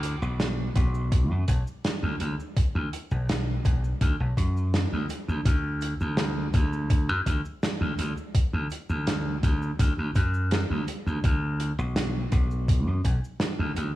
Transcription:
0.00 0.15 D2 loud
0.00 closed hi-hat medium
0.00 cabasa medium
0.22 0.69 B1 loud
0.22 cabasa soft
0.40 snare loud
0.40 closed hi-hat medium
0.40 cabasa soft
0.76 1.31 B1 medium
0.76 kick loud
0.76 closed hi-hat medium
0.76 cabasa medium
0.94 cabasa medium
1.12 kick loud
1.12 closed hi-hat medium
1.12 cabasa soft
1.31 1.44 F#2 loud
1.48 1.62 B1 loud
1.48 kick medium
1.48 closed hi-hat medium
1.48 cabasa medium
1.67 cabasa medium
1.84 snare loud
1.84 closed hi-hat medium
1.84 cabasa soft
2.03 2.16 D2 loud
2.20 2.34 D2 medium
2.20 closed hi-hat medium
2.20 cabasa medium
2.40 cabasa medium
2.56 muted slap bass stroke soft
2.56 kick loud
2.56 closed hi-hat loud
2.56 cabasa medium
2.75 2.88 D2 loud
2.93 closed hi-hat medium
2.93 cabasa medium
3.11 3.58 B1 loud
3.11 cabasa medium
3.29 snare loud
3.29 closed hi-hat loud
3.29 cabasa soft
3.65 3.92 B1 medium
3.65 kick loud
3.65 closed hi-hat medium
3.65 cabasa medium
3.84 cabasa medium
4.01 4.15 D2 loud
4.01 kick loud
4.01 closed hi-hat medium
4.01 cabasa soft
4.20 4.33 B1 medium
4.37 4.84 F#2 medium
4.37 kick medium
4.37 closed hi-hat medium
4.37 cabasa medium
4.57 cabasa medium
4.74 snare loud
4.74 closed hi-hat medium
4.74 cabasa medium
4.93 5.05 D2 medium
5.09 closed hi-hat medium
5.09 cabasa medium
5.28 5.41 D2 medium
5.28 cabasa medium
5.45 5.93 D2 loud
5.45 kick loud
5.45 closed hi-hat loud
5.45 cabasa soft
5.81 closed hi-hat medium
5.81 cabasa medium
6.00 6.47 D2 loud
6.00 cabasa medium
6.17 snare loud
6.17 closed hi-hat medium
6.17 cabasa soft
6.54 7.09 D2 loud
6.54 kick loud
6.54 closed hi-hat medium
6.54 cabasa medium
6.73 cabasa medium
6.90 kick loud
6.90 closed hi-hat loud
6.90 cabasa soft
7.09 7.22 F#2 loud
7.26 7.40 D2 loud
7.26 kick medium
7.26 closed hi-hat medium
7.26 cabasa medium
7.45 cabasa medium
7.63 snare loud
7.63 closed hi-hat medium
7.63 cabasa soft
7.81 7.94 D2 loud
7.98 8.13 D2 medium
7.98 closed hi-hat medium
7.98 cabasa medium
8.17 cabasa medium
8.35 muted slap bass stroke soft
8.35 kick loud
8.35 closed hi-hat medium
8.35 cabasa soft
8.53 8.66 D2 loud
8.70 closed hi-hat medium
8.70 cabasa medium
8.89 9.36 D2 loud
8.89 cabasa medium
9.07 snare loud
9.07 closed hi-hat loud
9.07 cabasa soft
9.43 9.70 D2 loud
9.43 kick loud
9.43 closed hi-hat medium
9.43 cabasa medium
9.62 cabasa medium
9.79 9.93 D2 loud
9.79 kick loud
9.79 closed hi-hat medium
9.79 cabasa soft
9.98 10.11 D2 medium
10.15 10.63 F#2 medium
10.15 kick medium
10.15 closed hi-hat medium
10.15 cabasa medium
10.34 cabasa medium
10.51 snare loud
10.51 closed hi-hat medium
10.51 cabasa soft
10.70 10.83 D2 medium
10.88 closed hi-hat medium
10.88 cabasa medium
11.07 11.19 D2 medium
11.07 cabasa medium
11.24 11.71 D2 loud
11.24 kick loud
11.24 closed hi-hat medium
11.24 cabasa soft
11.60 closed hi-hat medium
11.60 cabasa medium
11.79 12.25 B1 loud
11.79 cabasa medium
11.96 snare loud
11.96 closed hi-hat medium
11.96 cabasa soft
12.32 12.87 B1 loud
12.32 kick loud
12.32 closed hi-hat medium
12.32 cabasa medium
12.51 cabasa medium
12.68 kick loud
12.68 closed hi-hat medium
12.68 cabasa soft
12.87 13.00 F#2 loud
13.04 13.19 B1 loud
13.04 kick medium
13.04 closed hi-hat medium
13.04 cabasa medium
13.24 cabasa medium
13.40 snare loud
13.40 closed hi-hat medium
13.40 cabasa soft
13.59 13.72 D2 loud
13.76 13.91 D2 medium
13.76 closed hi-hat medium
13.76 cabasa medium

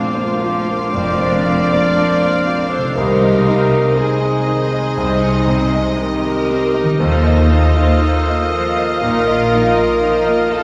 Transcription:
0.00 0.89 A#1 medium
0.00 2.57 A#2 medium
0.00 0.15 C4 medium
0.00 2.91 C4 medium
0.00 0.30 D4 soft
0.00 0.96 D4 medium
0.00 2.62 D4 soft
0.00 2.91 D4 medium
0.00 0.42 F4 medium
0.00 0.90 F4 medium
0.00 0.96 F4 medium
0.00 2.66 F4 soft
0.00 0.15 C5 medium
0.00 2.92 C5 medium
0.00 3.93 F5 medium
0.00 2.92 D6 medium
0.15 0.42 A#3 medium
0.15 0.57 C5 medium
0.42 0.68 F3 medium
0.42 0.84 F4 soft
0.68 0.94 A#3 medium
0.68 1.10 C5 soft
0.94 1.79 F1 medium
0.94 1.79 F2 medium
0.94 1.36 F2 medium
0.94 1.18 C4 medium
0.94 2.70 A#4 medium
0.94 2.69 D5 loud
0.94 2.71 D5 medium
1.21 1.46 D4 medium
1.21 1.61 C5 medium
1.46 1.71 C4 medium
1.46 1.86 F4 soft
1.72 1.96 A#3 medium
1.72 2.11 C5 soft
1.96 2.21 F3 medium
1.96 2.36 D4 soft
2.22 2.46 A#3 medium
2.22 2.61 C5 soft
2.46 2.71 C4 medium
2.46 2.87 F4 soft
2.70 2.96 D4 medium
2.70 2.99 A4 medium
2.70 2.98 C5 medium
2.70 2.95 C5 medium
2.70 2.97 C5 soft
2.78 6.68 C3 medium
2.82 6.72 D#4 medium
2.87 6.77 D#5 medium
2.95 3.80 C2 medium
2.95 4.94 C2 medium
2.95 3.80 C3 medium
2.95 3.20 D#3 medium
2.95 6.84 C4 medium
2.95 6.84 D#4 medium
2.95 3.71 D#4 medium
2.95 3.99 G4 medium
2.95 3.95 A#4 medium
2.95 4.00 A#4 medium
2.95 6.69 C5 medium
2.95 6.70 D#6 medium
3.21 3.47 G#3 medium
3.21 3.62 D#5 soft
3.46 3.71 C4 medium
3.46 3.87 D#4 medium
3.72 3.97 D#4 medium
3.72 4.12 D#5 medium
3.96 4.22 C4 medium
3.96 4.37 D#4 medium
3.96 5.71 D#4 medium
3.96 5.99 G#4 medium
3.96 5.72 G#4 medium
3.96 6.99 D#5 medium
4.22 4.47 G#3 medium
4.22 4.62 D#5 soft
4.47 4.73 D#3 medium
4.47 4.87 D#4 medium
4.72 4.97 G#3 medium
4.72 5.12 D#5 medium
4.97 6.96 C2 medium
4.97 5.82 C2 medium
4.97 5.82 C3 medium
4.97 5.21 C4 medium
5.22 5.63 D#4 medium
5.22 5.49 D#4 medium
5.48 5.89 C3 medium
5.48 5.74 C4 medium
5.74 6.00 G#3 medium
5.74 6.14 D#5 medium
5.98 6.25 D#3 medium
5.98 6.40 D#4 medium
5.98 7.01 G4 medium
5.98 7.00 A#4 medium
5.98 7.01 A#4 medium
6.25 6.51 G#3 medium
6.25 6.65 D#5 soft
6.50 6.76 C4 medium
6.50 6.91 D#4 medium
6.75 7.01 D#4 medium
6.75 7.00 D#5 medium
6.83 10.63 D#3 medium
6.87 10.63 D#4 medium
6.91 10.63 F4 medium
6.96 8.98 D#2 medium
6.96 9.04 C5 medium
6.96 10.63 D#5 medium
7.00 7.85 D#2 medium
7.00 7.24 F3 medium
7.00 10.63 A#3 medium
7.00 7.51 D#4 medium
7.00 10.63 F4 medium
7.00 9.04 A4 medium
7.00 8.99 C5 medium
7.00 10.63 D#5 medium
7.00 10.63 F5 medium
7.00 10.63 D#6 medium
7.25 7.52 A#3 medium
7.25 7.66 D#5 medium
7.51 7.77 D#4 medium
7.51 7.91 F4 medium
7.77 8.02 F4 medium
7.77 8.17 D#5 medium
8.02 8.42 D#4 medium
8.02 8.27 D#4 medium
8.28 8.53 A#3 medium
8.28 8.68 D#5 medium
8.52 8.78 F3 medium
8.52 8.92 F4 soft
8.76 9.04 A#3 medium
8.76 9.17 D#5 medium
9.01 9.86 A#1 medium
9.01 9.42 A#2 medium
9.01 9.86 A#2 medium
9.01 9.27 D#4 medium
9.01 10.51 F4 loud
9.01 10.49 A#4 medium
9.01 10.52 A#4 medium
9.26 9.53 F4 medium
9.26 9.66 D#5 medium
9.52 9.78 D#4 medium
9.52 9.92 F4 medium
9.76 10.03 A#3 medium
9.76 10.16 D#5 medium
10.01 10.28 F3 medium
10.01 10.41 D#4 medium
10.25 10.53 A#3 medium
10.25 10.63 D#5 medium
10.50 10.63 F4 medium
10.50 10.63 A4 medium
10.55 10.63 D#4 medium

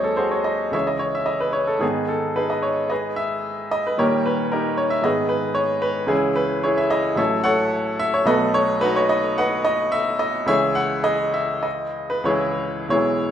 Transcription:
0.00 0.69 D#2 soft
0.00 0.69 F#3 soft
0.00 0.70 G#3 soft
0.00 0.70 C4 soft
0.00 0.17 G#4 medium
0.00 0.18 A4 medium
0.00 0.17 C5 medium
0.00 0.31 C#5 medium
0.00 0.44 D#5 medium
0.17 0.31 F#4 medium
0.17 0.31 G#4 medium
0.17 0.31 C5 medium
0.31 0.46 C#5 medium
0.44 0.73 D#5 medium
0.71 1.77 C#2 soft
0.71 1.78 E3 soft
0.71 1.78 G#3 soft
0.71 1.79 C#4 soft
0.71 0.87 G#4 medium
0.71 0.87 C#5 medium
0.71 0.87 E5 medium
0.87 1.01 D#5 medium
0.99 1.13 C#5 medium
1.15 1.28 E5 medium
1.26 1.40 D#5 medium
1.40 1.54 B4 medium
1.53 1.67 C#5 medium
1.67 1.82 A4 medium
1.79 3.95 G#2 soft
1.79 3.96 D#3 soft
1.79 3.96 G#3 soft
1.79 2.07 B3 medium
1.79 2.07 D#4 medium
1.79 2.09 G#4 medium
2.08 2.36 A4 medium
2.36 2.49 D#4 medium
2.36 2.50 G#4 medium
2.36 2.50 B4 medium
2.50 2.63 D#5 medium
2.63 2.90 C#5 medium
2.90 3.16 G#4 medium
2.90 3.16 B4 medium
2.90 3.17 D#5 medium
3.16 3.73 E5 medium
3.71 3.86 D#5 medium
3.87 4.01 B4 medium
3.97 5.01 A#2 medium
3.97 5.01 D#3 soft
3.97 5.01 G3 soft
3.97 5.02 A#3 soft
3.97 4.25 G4 medium
3.97 4.25 A#4 medium
3.97 4.27 C#5 medium
4.26 4.53 B4 medium
4.52 4.78 D#4 medium
4.52 4.78 G4 medium
4.52 4.79 A#4 medium
4.77 4.92 C#5 medium
4.90 5.04 E5 medium
5.02 6.06 G#2 soft
5.02 6.07 D#3 soft
5.02 6.07 G#3 soft
5.02 6.08 B3 soft
5.02 5.29 G#4 medium
5.02 5.27 B4 medium
5.02 5.30 D#5 medium
5.29 5.56 B4 medium
5.55 5.83 C#5 medium
5.82 6.10 B4 medium
6.06 7.13 C#2 medium
6.06 7.14 E3 medium
6.06 7.14 G#3 soft
6.06 6.35 C#4 medium
6.06 6.35 E4 medium
6.06 6.37 G#4 medium
6.36 6.64 B4 medium
6.63 6.78 E4 medium
6.63 6.78 G#4 medium
6.63 6.78 C#5 medium
6.78 6.91 E5 medium
6.90 7.18 D#5 medium
7.15 8.24 A1 medium
7.15 8.24 F#3 soft
7.15 8.25 A3 soft
7.15 8.26 E4 soft
7.15 7.43 A4 medium
7.15 7.43 C#5 medium
7.15 7.45 E5 medium
7.44 7.97 A4 medium
7.44 7.97 C#5 medium
7.44 8.00 F#5 medium
7.99 8.14 E5 loud
8.14 8.29 C#5 medium
8.25 10.44 B1 medium
8.25 10.44 F#3 medium
8.25 10.44 A3 soft
8.25 10.45 B3 soft
8.25 8.54 A4 medium
8.25 8.54 B4 medium
8.25 8.56 D#5 loud
8.54 8.83 C#5 medium
8.81 8.96 D#4 medium
8.81 8.96 F#4 medium
8.81 8.97 B4 medium
8.96 9.11 C#5 medium
9.09 9.38 D#5 medium
9.38 9.65 B4 medium
9.38 9.63 D#5 medium
9.38 9.66 F#5 medium
9.65 9.93 D#5 medium
9.92 10.21 E5 medium
10.19 10.49 D#5 medium
10.46 12.21 C#2 medium
10.46 12.22 E3 soft
10.46 12.22 G#3 soft
10.46 10.75 G#4 medium
10.46 10.75 C#5 medium
10.46 10.77 E5 loud
10.75 11.05 F#5 medium
11.04 11.32 G#4 medium
11.04 11.34 D#5 medium
11.34 11.64 E5 medium
11.63 12.10 D#5 medium
12.10 12.27 B4 medium
12.24 12.88 C#2 medium
12.24 12.88 E3 soft
12.24 12.89 G#3 soft
12.24 12.88 E4 medium
12.24 12.88 G#4 medium
12.24 12.89 C#5 medium
12.89 13.31 B1 soft
12.89 13.31 E3 soft
12.89 13.31 G#3 soft
12.89 13.31 B3 soft
12.89 13.31 E4 medium
12.89 13.31 G#4 medium
12.89 13.31 C#5 medium

